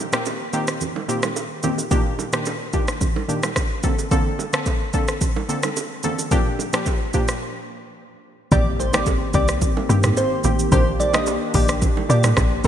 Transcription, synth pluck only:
0.12 0.31 A#2 medium
0.12 0.32 D#3 medium
0.12 0.32 A#3 medium
0.12 0.32 C4 medium
0.12 0.32 G4 medium
0.53 0.73 A#2 medium
0.53 0.73 D#3 medium
0.53 0.73 A#3 medium
0.53 0.73 C4 medium
0.53 0.73 G4 medium
1.08 1.28 A#2 medium
1.08 1.28 D#3 medium
1.08 1.28 A#3 medium
1.08 1.28 C4 medium
1.08 1.28 G4 medium
1.63 1.83 A#2 medium
1.63 1.83 D#3 medium
1.63 1.83 A#3 medium
1.63 1.83 C4 medium
1.63 1.83 G4 medium
1.91 2.10 A#2 medium
1.91 2.11 D#3 medium
1.91 2.11 A#3 medium
1.91 2.11 D4 medium
1.91 2.11 G4 loud
2.33 2.52 A#2 medium
2.33 2.52 D#3 medium
2.33 2.52 A#3 medium
2.33 2.52 D4 medium
2.33 2.52 G4 medium
2.73 2.93 A#2 medium
2.73 2.93 D#3 medium
2.73 2.93 A#3 medium
2.73 2.93 D4 medium
2.73 2.93 G4 medium
3.29 3.48 A#2 medium
3.29 3.48 D#3 medium
3.29 3.48 A#3 medium
3.29 3.48 D4 medium
3.29 3.48 G4 medium
3.83 4.03 D3 medium
3.83 4.03 A#3 medium
3.83 4.03 C4 medium
3.83 4.03 A4 medium
4.11 4.31 D3 medium
4.11 4.31 A#3 medium
4.11 4.31 C4 medium
4.11 4.31 A4 loud
4.53 4.72 D3 medium
4.53 4.72 A#3 medium
4.53 4.72 C4 medium
4.53 4.72 A4 medium
4.94 5.13 D3 medium
4.94 5.13 A#3 medium
4.94 5.14 C4 medium
4.94 5.14 A4 medium
5.49 5.68 D3 medium
5.49 5.68 A#3 medium
5.49 5.69 C4 medium
5.49 5.69 A4 medium
6.04 6.23 D3 medium
6.04 6.24 A#3 medium
6.04 6.24 C4 medium
6.04 6.24 A4 medium
6.31 6.51 A#2 medium
6.31 6.51 F3 medium
6.31 6.51 A#3 medium
6.31 6.51 D4 medium
6.31 6.51 G4 loud
6.73 6.92 A#2 medium
6.73 6.92 F3 medium
6.73 6.92 A#3 medium
6.73 6.92 D4 medium
6.73 6.92 G4 medium
7.14 7.33 A#2 medium
7.14 7.34 F3 medium
7.14 7.34 A#3 medium
7.14 7.34 D4 medium
7.14 7.34 G4 medium
8.51 8.71 D#3 medium
8.51 8.71 A#3 medium
8.51 8.71 C4 medium
8.51 8.71 G4 loud
8.93 9.12 D#3 medium
8.93 9.12 A#3 medium
8.93 9.12 C4 medium
8.93 9.13 G4 medium
9.34 9.54 D#3 medium
9.34 9.54 A#3 medium
9.34 9.54 C4 medium
9.34 9.54 G4 medium
9.89 10.09 D#3 medium
9.89 10.09 A#3 medium
9.89 10.09 C4 medium
9.89 10.09 G4 medium
10.44 10.64 D#3 medium
10.44 10.64 A#3 medium
10.44 10.64 C4 medium
10.44 10.64 G4 medium
10.72 10.91 D#3 medium
10.72 10.91 A#3 medium
10.72 10.92 D4 medium
10.72 10.92 G4 loud
11.14 11.33 D#3 medium
11.14 11.33 A#3 medium
11.14 11.33 D4 medium
11.14 11.33 G4 medium
11.54 11.74 D#3 medium
11.54 11.74 A#3 medium
11.54 11.74 D4 medium
11.54 11.74 G4 medium
12.09 12.29 D#3 medium
12.09 12.29 A#3 medium
12.09 12.29 D4 medium
12.09 12.29 G4 medium

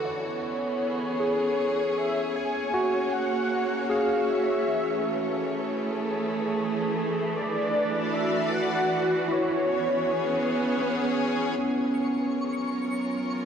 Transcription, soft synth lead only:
0.05 1.99 C#5 loud
1.98 2.35 E5 loud
2.36 3.15 G#5 loud
3.13 3.92 F#5 loud
3.91 4.30 F5 medium
4.29 5.82 E5 loud
7.36 8.15 D5 medium
8.13 8.54 E5 loud
8.52 9.33 F#5 loud
9.31 11.22 C#5 medium

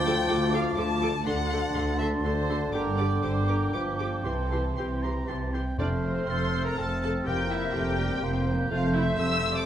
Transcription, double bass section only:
0.00 0.24 D2 medium
0.30 0.72 D2 medium
0.77 1.20 D2 medium
1.26 1.69 D2 medium
1.75 2.18 D2 medium
2.24 2.67 D2 medium
2.73 3.16 G1 medium
3.22 3.67 G1 soft
3.73 4.19 G1 soft
4.25 4.71 C2 soft
4.77 5.22 C2 soft
5.28 5.73 C2 soft
5.78 6.23 F1 soft
6.28 6.72 F1 medium
6.78 7.21 F1 soft
7.27 7.70 F1 medium
7.75 8.18 F1 medium
8.23 8.66 F1 medium
8.71 9.14 F1 medium
9.20 9.63 F1 medium

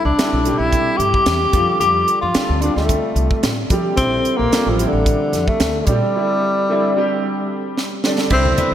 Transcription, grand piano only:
0.18 0.41 D3 medium
0.18 0.41 G3 medium
0.18 0.41 C4 medium
0.18 0.41 E4 medium
0.45 1.34 D3 medium
0.45 1.34 G3 medium
0.45 1.35 C4 medium
0.45 1.35 G4 medium
1.52 2.20 D3 medium
1.52 2.20 G3 medium
1.52 2.21 C4 medium
1.52 2.21 F4 medium
2.34 2.57 D3 medium
2.34 2.57 G3 medium
2.34 2.57 C4 medium
2.34 2.58 D4 medium
2.62 3.51 D3 medium
2.62 3.51 G3 medium
2.62 3.51 C4 medium
2.62 3.52 F4 medium
3.70 3.93 D3 medium
3.70 3.93 G3 medium
3.70 3.93 C4 medium
3.70 3.94 G4 medium
3.97 4.42 D3 medium
3.97 4.43 G3 medium
3.97 4.43 C4 medium
3.97 4.43 E4 medium
4.51 4.74 D3 medium
4.51 4.74 G3 medium
4.51 4.74 C4 medium
4.51 4.75 F4 medium
4.79 5.67 D3 medium
4.79 5.68 G3 medium
4.79 5.68 C4 medium
4.79 5.68 E4 medium
5.88 6.10 D3 medium
5.88 6.10 G3 medium
5.88 6.11 C4 medium
5.88 6.11 G4 medium
6.14 6.59 D3 medium
6.14 6.59 G3 medium
6.14 6.60 C4 medium
6.14 6.60 E4 medium
6.69 6.91 D3 medium
6.69 6.92 G3 medium
6.69 6.92 C4 medium
6.69 6.92 E4 medium
6.96 7.84 D3 medium
6.96 7.85 G3 medium
6.96 7.85 C4 medium
6.96 7.85 G4 medium
8.03 8.26 D3 medium
8.03 8.27 G3 medium
8.03 8.27 C4 medium
8.03 8.27 D4 medium
8.31 8.74 D3 medium
8.31 8.74 G3 medium
8.31 8.74 C4 medium
8.31 8.74 E4 medium

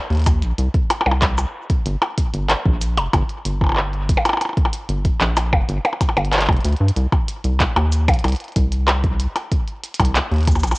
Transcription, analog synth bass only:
0.10 0.44 D#2 medium
0.42 0.53 A#1 loud
0.58 0.69 C2 medium
1.06 1.45 C2 medium
1.86 1.96 G1 loud
2.34 2.55 G1 medium
2.65 2.99 A#1 medium
2.97 3.08 F1 loud
3.13 3.24 G1 loud
3.45 4.17 G1 medium
4.89 5.10 G1 medium
5.21 5.54 A#1 medium
5.53 5.63 F1 loud
5.69 5.79 G1 loud
6.17 6.48 G1 medium
6.48 6.59 F1 medium
6.64 6.75 D2 loud
6.80 6.91 G2 medium
6.96 7.07 C2 loud
7.44 7.65 C2 medium
7.76 8.10 D#2 medium
8.08 8.19 A#1 loud
8.24 8.35 C2 loud
8.56 9.27 C2 medium
10.00 10.21 C2 medium
10.31 10.65 D#2 medium
10.63 10.74 A#1 loud

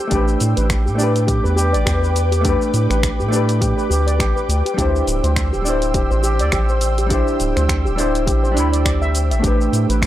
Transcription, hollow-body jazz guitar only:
0.00 0.10 C5 medium
0.08 0.94 A3 medium
0.08 0.95 D4 medium
0.13 0.97 G4 medium
0.13 0.98 B4 medium
0.95 2.40 A3 medium
0.95 2.41 D4 medium
1.00 2.42 G4 medium
1.00 2.44 B4 medium
2.41 3.27 A3 medium
2.41 3.28 D4 medium
2.46 3.30 G4 medium
2.46 3.31 B4 medium
3.28 4.45 A3 medium
3.28 4.46 D4 medium
3.33 4.48 G4 medium
3.33 4.49 B4 medium
4.74 5.60 G3 medium
4.74 5.62 D4 medium
4.79 5.63 E4 medium
4.79 5.64 C5 medium
5.62 7.05 G3 medium
5.62 7.07 D4 medium
5.67 7.09 E4 medium
5.67 7.10 C5 medium
7.06 7.93 G3 medium
7.06 7.94 D4 medium
7.12 7.95 E4 medium
7.12 7.97 C5 medium
7.96 8.50 G3 medium
7.96 8.51 D4 medium
7.96 8.54 E4 medium
8.00 8.55 C5 medium
8.52 9.38 G3 medium
8.52 9.40 D4 medium
8.57 9.39 E4 medium
8.57 9.42 B5 medium
9.39 10.07 A3 medium
9.39 10.07 D4 medium
9.45 10.07 G4 medium
9.45 10.07 B4 medium

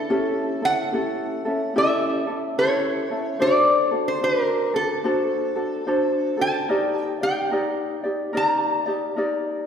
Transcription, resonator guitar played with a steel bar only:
0.00 0.64 A4 medium
0.65 1.78 F#5 medium
1.78 2.61 E5 medium
2.59 3.43 C#5 medium
3.42 4.08 D5 loud
4.08 4.23 C5 medium
4.24 4.44 B4 medium
4.44 4.75 A#4 medium
4.76 6.45 A4 medium
6.41 7.02 A5 medium
7.02 7.23 G5 medium
7.23 8.39 G5 medium
8.37 8.90 A#5 medium
8.90 9.14 A5 medium

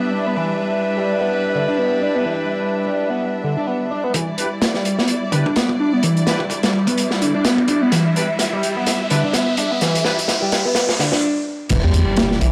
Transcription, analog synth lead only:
0.13 0.22 D4 loud
0.27 0.36 B3 medium
0.36 0.46 E3 medium
0.97 1.19 G3 medium
1.21 1.31 B3 medium
1.55 1.60 D3 medium
1.68 1.77 D4 loud
1.78 1.87 B3 loud
2.02 2.11 D4 loud
2.15 2.25 B3 medium
2.25 2.35 E3 medium
2.86 3.08 G3 medium
3.10 3.19 B3 medium
3.44 3.49 D3 medium
3.57 3.66 D4 loud
3.67 3.76 B3 loud
3.91 4.00 D4 loud
4.04 4.14 B3 medium
4.14 4.24 E3 medium
4.75 4.97 G3 medium
4.98 5.08 B3 medium
5.33 5.38 D3 medium
5.46 5.55 D4 loud
5.56 5.65 B3 loud
5.80 5.89 D4 loud
5.93 6.02 B3 medium
6.03 6.12 E3 medium
6.64 6.86 G3 medium
6.87 6.97 B3 medium
7.21 7.27 D3 medium
7.35 7.44 D4 loud
7.45 7.54 B3 loud
7.69 7.78 D4 loud
7.82 7.91 B3 medium
7.92 8.01 E3 medium
8.53 8.75 G3 medium
8.76 8.86 B3 medium
9.11 9.16 D3 medium
9.24 9.33 D4 loud
9.34 9.43 B3 loud
9.58 9.67 D4 loud
9.71 9.81 B3 medium
9.81 9.91 E3 medium
10.42 10.64 G3 medium
10.66 10.75 B3 medium
10.99 11.05 D3 medium
11.13 11.22 D4 loud
11.71 11.76 E3 medium
11.84 12.30 G3 medium
12.41 12.47 E3 loud

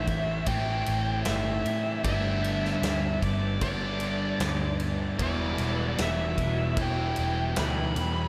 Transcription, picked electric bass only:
0.08 0.42 A1 medium
0.47 0.82 A1 medium
0.88 1.22 A1 medium
1.27 1.61 G1 medium
1.66 2.00 A2 medium
2.04 2.74 G1 medium
2.82 3.18 D2 medium
3.23 3.58 G1 medium
3.62 4.32 G1 medium
4.40 5.10 D2 loud
5.19 5.54 E1 medium
5.59 5.94 E1 medium
5.99 6.34 E1 medium
6.38 6.73 E1 medium
6.77 7.12 E1 medium
7.19 7.53 E1 medium
7.58 7.92 D2 medium
7.97 8.28 E2 medium

